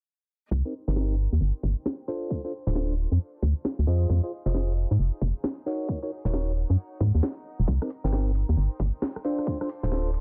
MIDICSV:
0, 0, Header, 1, 5, 480
1, 0, Start_track
1, 0, Key_signature, -3, "minor"
1, 0, Tempo, 447761
1, 551, Time_signature, 4, 2, 24, 8
1, 10939, End_track
2, 0, Start_track
2, 0, Title_t, "String section"
2, 0, Program_c, 0, 48
2, 552, Note_on_c, 0, 63, 70
2, 706, Note_on_c, 0, 70, 73
2, 758, Note_on_c, 0, 72, 69
2, 1435, Note_on_c, 0, 79, 74
2, 2471, Note_off_c, 0, 70, 0
2, 2472, Note_off_c, 0, 63, 0
2, 2472, Note_on_c, 0, 62, 66
2, 2708, Note_on_c, 0, 69, 71
2, 3083, Note_off_c, 0, 79, 0
2, 3361, Note_on_c, 0, 77, 81
2, 4390, Note_on_c, 0, 63, 90
2, 4391, Note_off_c, 0, 62, 0
2, 4392, Note_off_c, 0, 69, 0
2, 4544, Note_on_c, 0, 68, 79
2, 6070, Note_off_c, 0, 72, 0
2, 6072, Note_off_c, 0, 77, 0
2, 6542, Note_on_c, 0, 70, 72
2, 6741, Note_on_c, 0, 73, 74
2, 6960, Note_off_c, 0, 68, 0
2, 7046, Note_on_c, 0, 78, 70
2, 8231, Note_off_c, 0, 78, 0
2, 8232, Note_off_c, 0, 73, 0
2, 9118, Note_on_c, 0, 72, 77
2, 9120, Note_on_c, 0, 79, 68
2, 10150, Note_on_c, 0, 62, 65
2, 10151, Note_off_c, 0, 63, 0
2, 10153, Note_off_c, 0, 70, 0
2, 10393, Note_on_c, 0, 69, 75
2, 10933, Note_off_c, 0, 79, 0
2, 10939, Note_off_c, 0, 62, 0
2, 10939, Note_off_c, 0, 69, 0
2, 10939, Note_off_c, 0, 72, 0
2, 10939, End_track
3, 0, Start_track
3, 0, Title_t, "Synth stab"
3, 0, Program_c, 1, 62
3, 699, Note_on_c, 1, 70, 80
3, 700, Note_on_c, 1, 60, 70
3, 700, Note_on_c, 1, 63, 66
3, 700, Note_on_c, 1, 67, 65
3, 787, Note_off_c, 1, 60, 0
3, 787, Note_off_c, 1, 63, 0
3, 787, Note_off_c, 1, 67, 0
3, 787, Note_off_c, 1, 70, 0
3, 940, Note_on_c, 1, 60, 91
3, 940, Note_on_c, 1, 63, 85
3, 940, Note_on_c, 1, 67, 87
3, 940, Note_on_c, 1, 70, 102
3, 1014, Note_off_c, 1, 70, 0
3, 1015, Note_off_c, 1, 63, 0
3, 1015, Note_off_c, 1, 67, 0
3, 1017, Note_off_c, 1, 60, 0
3, 1027, Note_on_c, 1, 70, 99
3, 1028, Note_on_c, 1, 60, 88
3, 1028, Note_on_c, 1, 63, 83
3, 1028, Note_on_c, 1, 67, 83
3, 1228, Note_off_c, 1, 70, 0
3, 1229, Note_off_c, 1, 60, 0
3, 1229, Note_off_c, 1, 63, 0
3, 1229, Note_off_c, 1, 67, 0
3, 2228, Note_on_c, 1, 69, 84
3, 2228, Note_on_c, 1, 72, 102
3, 2229, Note_on_c, 1, 62, 90
3, 2229, Note_on_c, 1, 65, 80
3, 2584, Note_off_c, 1, 65, 0
3, 2584, Note_off_c, 1, 69, 0
3, 2584, Note_off_c, 1, 72, 0
3, 2585, Note_off_c, 1, 62, 0
3, 2621, Note_on_c, 1, 62, 71
3, 2621, Note_on_c, 1, 65, 65
3, 2621, Note_on_c, 1, 69, 65
3, 2622, Note_on_c, 1, 72, 81
3, 2707, Note_off_c, 1, 62, 0
3, 2708, Note_off_c, 1, 65, 0
3, 2708, Note_off_c, 1, 69, 0
3, 2708, Note_off_c, 1, 72, 0
3, 2858, Note_on_c, 1, 69, 85
3, 2859, Note_on_c, 1, 62, 97
3, 2859, Note_on_c, 1, 65, 84
3, 2859, Note_on_c, 1, 72, 105
3, 2936, Note_off_c, 1, 62, 0
3, 2936, Note_off_c, 1, 69, 0
3, 2936, Note_off_c, 1, 72, 0
3, 2937, Note_off_c, 1, 65, 0
3, 2950, Note_on_c, 1, 62, 94
3, 2950, Note_on_c, 1, 65, 82
3, 2950, Note_on_c, 1, 69, 86
3, 2950, Note_on_c, 1, 72, 97
3, 3150, Note_off_c, 1, 62, 0
3, 3150, Note_off_c, 1, 65, 0
3, 3150, Note_off_c, 1, 69, 0
3, 3150, Note_off_c, 1, 72, 0
3, 4149, Note_on_c, 1, 65, 90
3, 4149, Note_on_c, 1, 68, 80
3, 4150, Note_on_c, 1, 72, 82
3, 4150, Note_on_c, 1, 75, 97
3, 4505, Note_off_c, 1, 65, 0
3, 4505, Note_off_c, 1, 68, 0
3, 4505, Note_off_c, 1, 72, 0
3, 4505, Note_off_c, 1, 75, 0
3, 4538, Note_on_c, 1, 65, 70
3, 4538, Note_on_c, 1, 68, 66
3, 4538, Note_on_c, 1, 72, 64
3, 4539, Note_on_c, 1, 75, 80
3, 4626, Note_off_c, 1, 65, 0
3, 4626, Note_off_c, 1, 68, 0
3, 4626, Note_off_c, 1, 72, 0
3, 4626, Note_off_c, 1, 75, 0
3, 4778, Note_on_c, 1, 65, 93
3, 4778, Note_on_c, 1, 72, 89
3, 4779, Note_on_c, 1, 68, 83
3, 4779, Note_on_c, 1, 75, 108
3, 4856, Note_off_c, 1, 65, 0
3, 4856, Note_off_c, 1, 68, 0
3, 4856, Note_off_c, 1, 72, 0
3, 4856, Note_off_c, 1, 75, 0
3, 4867, Note_on_c, 1, 65, 90
3, 4867, Note_on_c, 1, 75, 102
3, 4868, Note_on_c, 1, 68, 86
3, 4868, Note_on_c, 1, 72, 84
3, 5068, Note_off_c, 1, 65, 0
3, 5069, Note_off_c, 1, 68, 0
3, 5069, Note_off_c, 1, 72, 0
3, 5069, Note_off_c, 1, 75, 0
3, 6069, Note_on_c, 1, 63, 85
3, 6069, Note_on_c, 1, 66, 80
3, 6069, Note_on_c, 1, 70, 80
3, 6069, Note_on_c, 1, 73, 94
3, 6425, Note_off_c, 1, 63, 0
3, 6425, Note_off_c, 1, 66, 0
3, 6425, Note_off_c, 1, 70, 0
3, 6425, Note_off_c, 1, 73, 0
3, 6460, Note_on_c, 1, 63, 68
3, 6460, Note_on_c, 1, 66, 65
3, 6460, Note_on_c, 1, 73, 79
3, 6461, Note_on_c, 1, 70, 65
3, 6547, Note_off_c, 1, 63, 0
3, 6547, Note_off_c, 1, 66, 0
3, 6547, Note_off_c, 1, 73, 0
3, 6548, Note_off_c, 1, 70, 0
3, 6700, Note_on_c, 1, 73, 105
3, 6701, Note_on_c, 1, 63, 97
3, 6701, Note_on_c, 1, 66, 86
3, 6701, Note_on_c, 1, 70, 88
3, 6777, Note_off_c, 1, 66, 0
3, 6777, Note_off_c, 1, 70, 0
3, 6777, Note_off_c, 1, 73, 0
3, 6778, Note_off_c, 1, 63, 0
3, 6788, Note_on_c, 1, 66, 88
3, 6788, Note_on_c, 1, 73, 103
3, 6789, Note_on_c, 1, 63, 89
3, 6789, Note_on_c, 1, 70, 84
3, 6989, Note_off_c, 1, 63, 0
3, 6989, Note_off_c, 1, 66, 0
3, 6989, Note_off_c, 1, 70, 0
3, 6989, Note_off_c, 1, 73, 0
3, 8380, Note_on_c, 1, 60, 73
3, 8380, Note_on_c, 1, 63, 66
3, 8380, Note_on_c, 1, 67, 63
3, 8380, Note_on_c, 1, 70, 77
3, 8467, Note_off_c, 1, 60, 0
3, 8467, Note_off_c, 1, 63, 0
3, 8467, Note_off_c, 1, 67, 0
3, 8467, Note_off_c, 1, 70, 0
3, 8621, Note_on_c, 1, 60, 93
3, 8621, Note_on_c, 1, 70, 106
3, 8622, Note_on_c, 1, 63, 83
3, 8622, Note_on_c, 1, 67, 85
3, 8697, Note_off_c, 1, 60, 0
3, 8697, Note_off_c, 1, 70, 0
3, 8698, Note_off_c, 1, 63, 0
3, 8698, Note_off_c, 1, 67, 0
3, 8711, Note_on_c, 1, 60, 91
3, 8711, Note_on_c, 1, 63, 85
3, 8711, Note_on_c, 1, 67, 86
3, 8711, Note_on_c, 1, 70, 102
3, 8910, Note_off_c, 1, 60, 0
3, 8910, Note_off_c, 1, 67, 0
3, 8911, Note_off_c, 1, 63, 0
3, 8911, Note_off_c, 1, 70, 0
3, 9911, Note_on_c, 1, 62, 86
3, 9911, Note_on_c, 1, 65, 83
3, 9911, Note_on_c, 1, 72, 100
3, 9912, Note_on_c, 1, 69, 80
3, 10266, Note_off_c, 1, 62, 0
3, 10266, Note_off_c, 1, 65, 0
3, 10266, Note_off_c, 1, 69, 0
3, 10266, Note_off_c, 1, 72, 0
3, 10301, Note_on_c, 1, 72, 78
3, 10302, Note_on_c, 1, 62, 73
3, 10302, Note_on_c, 1, 65, 63
3, 10302, Note_on_c, 1, 69, 66
3, 10388, Note_off_c, 1, 62, 0
3, 10388, Note_off_c, 1, 65, 0
3, 10388, Note_off_c, 1, 69, 0
3, 10388, Note_off_c, 1, 72, 0
3, 10539, Note_on_c, 1, 69, 88
3, 10540, Note_on_c, 1, 62, 95
3, 10540, Note_on_c, 1, 65, 88
3, 10540, Note_on_c, 1, 72, 102
3, 10617, Note_off_c, 1, 62, 0
3, 10617, Note_off_c, 1, 65, 0
3, 10617, Note_off_c, 1, 69, 0
3, 10617, Note_off_c, 1, 72, 0
3, 10630, Note_on_c, 1, 62, 93
3, 10630, Note_on_c, 1, 69, 84
3, 10630, Note_on_c, 1, 72, 100
3, 10631, Note_on_c, 1, 65, 86
3, 10830, Note_off_c, 1, 62, 0
3, 10830, Note_off_c, 1, 65, 0
3, 10830, Note_off_c, 1, 69, 0
3, 10830, Note_off_c, 1, 72, 0
3, 10939, End_track
4, 0, Start_track
4, 0, Title_t, "FM bass"
4, 0, Program_c, 2, 39
4, 550, Note_on_c, 2, 36, 95
4, 669, Note_off_c, 2, 36, 0
4, 943, Note_on_c, 2, 31, 89
4, 1370, Note_off_c, 2, 31, 0
4, 1421, Note_on_c, 2, 39, 85
4, 1491, Note_off_c, 2, 39, 0
4, 1510, Note_on_c, 2, 31, 80
4, 1629, Note_off_c, 2, 31, 0
4, 1750, Note_on_c, 2, 31, 77
4, 1869, Note_off_c, 2, 31, 0
4, 2861, Note_on_c, 2, 26, 88
4, 3290, Note_off_c, 2, 26, 0
4, 3341, Note_on_c, 2, 41, 85
4, 3412, Note_off_c, 2, 41, 0
4, 3671, Note_on_c, 2, 38, 99
4, 3789, Note_off_c, 2, 38, 0
4, 4062, Note_on_c, 2, 38, 94
4, 4132, Note_off_c, 2, 38, 0
4, 4152, Note_on_c, 2, 41, 76
4, 4353, Note_off_c, 2, 41, 0
4, 4391, Note_on_c, 2, 41, 97
4, 4509, Note_off_c, 2, 41, 0
4, 4781, Note_on_c, 2, 29, 83
4, 5209, Note_off_c, 2, 29, 0
4, 5264, Note_on_c, 2, 44, 87
4, 5333, Note_off_c, 2, 44, 0
4, 5352, Note_on_c, 2, 29, 78
4, 5470, Note_off_c, 2, 29, 0
4, 5590, Note_on_c, 2, 29, 77
4, 5709, Note_off_c, 2, 29, 0
4, 6701, Note_on_c, 2, 27, 90
4, 7130, Note_off_c, 2, 27, 0
4, 7181, Note_on_c, 2, 42, 88
4, 7252, Note_off_c, 2, 42, 0
4, 7509, Note_on_c, 2, 44, 92
4, 7628, Note_off_c, 2, 44, 0
4, 7661, Note_on_c, 2, 39, 96
4, 7732, Note_off_c, 2, 39, 0
4, 8142, Note_on_c, 2, 27, 89
4, 8212, Note_off_c, 2, 27, 0
4, 8229, Note_on_c, 2, 36, 93
4, 8348, Note_off_c, 2, 36, 0
4, 8623, Note_on_c, 2, 31, 86
4, 9050, Note_off_c, 2, 31, 0
4, 9102, Note_on_c, 2, 39, 87
4, 9172, Note_off_c, 2, 39, 0
4, 9191, Note_on_c, 2, 31, 85
4, 9310, Note_off_c, 2, 31, 0
4, 9430, Note_on_c, 2, 31, 81
4, 9549, Note_off_c, 2, 31, 0
4, 10543, Note_on_c, 2, 26, 89
4, 10939, Note_off_c, 2, 26, 0
4, 10939, End_track
5, 0, Start_track
5, 0, Title_t, "Drums"
5, 550, Note_on_c, 9, 36, 109
5, 657, Note_off_c, 9, 36, 0
5, 1030, Note_on_c, 9, 38, 109
5, 1137, Note_off_c, 9, 38, 0
5, 1750, Note_on_c, 9, 36, 98
5, 1857, Note_off_c, 9, 36, 0
5, 1990, Note_on_c, 9, 38, 111
5, 2098, Note_off_c, 9, 38, 0
5, 2470, Note_on_c, 9, 36, 115
5, 2578, Note_off_c, 9, 36, 0
5, 2951, Note_on_c, 9, 38, 114
5, 3058, Note_off_c, 9, 38, 0
5, 3671, Note_on_c, 9, 36, 105
5, 3778, Note_off_c, 9, 36, 0
5, 3910, Note_on_c, 9, 38, 113
5, 4018, Note_off_c, 9, 38, 0
5, 4390, Note_on_c, 9, 36, 113
5, 4498, Note_off_c, 9, 36, 0
5, 4871, Note_on_c, 9, 38, 114
5, 4978, Note_off_c, 9, 38, 0
5, 5590, Note_on_c, 9, 36, 101
5, 5697, Note_off_c, 9, 36, 0
5, 5830, Note_on_c, 9, 38, 118
5, 5937, Note_off_c, 9, 38, 0
5, 6310, Note_on_c, 9, 36, 109
5, 6417, Note_off_c, 9, 36, 0
5, 6790, Note_on_c, 9, 38, 114
5, 6897, Note_off_c, 9, 38, 0
5, 7510, Note_on_c, 9, 36, 105
5, 7617, Note_off_c, 9, 36, 0
5, 7750, Note_on_c, 9, 38, 112
5, 7857, Note_off_c, 9, 38, 0
5, 8229, Note_on_c, 9, 36, 109
5, 8337, Note_off_c, 9, 36, 0
5, 8381, Note_on_c, 9, 37, 53
5, 8470, Note_on_c, 9, 46, 99
5, 8488, Note_off_c, 9, 37, 0
5, 8577, Note_off_c, 9, 46, 0
5, 8710, Note_on_c, 9, 38, 114
5, 8818, Note_off_c, 9, 38, 0
5, 8951, Note_on_c, 9, 46, 90
5, 9058, Note_off_c, 9, 46, 0
5, 9430, Note_on_c, 9, 36, 102
5, 9431, Note_on_c, 9, 46, 96
5, 9537, Note_off_c, 9, 36, 0
5, 9538, Note_off_c, 9, 46, 0
5, 9670, Note_on_c, 9, 38, 109
5, 9778, Note_off_c, 9, 38, 0
5, 9822, Note_on_c, 9, 37, 56
5, 9911, Note_on_c, 9, 46, 90
5, 9929, Note_off_c, 9, 37, 0
5, 10018, Note_off_c, 9, 46, 0
5, 10061, Note_on_c, 9, 37, 26
5, 10150, Note_on_c, 9, 36, 105
5, 10169, Note_off_c, 9, 37, 0
5, 10258, Note_off_c, 9, 36, 0
5, 10302, Note_on_c, 9, 37, 49
5, 10391, Note_on_c, 9, 46, 99
5, 10409, Note_off_c, 9, 37, 0
5, 10498, Note_off_c, 9, 46, 0
5, 10631, Note_on_c, 9, 38, 104
5, 10739, Note_off_c, 9, 38, 0
5, 10870, Note_on_c, 9, 46, 95
5, 10939, Note_off_c, 9, 46, 0
5, 10939, End_track
0, 0, End_of_file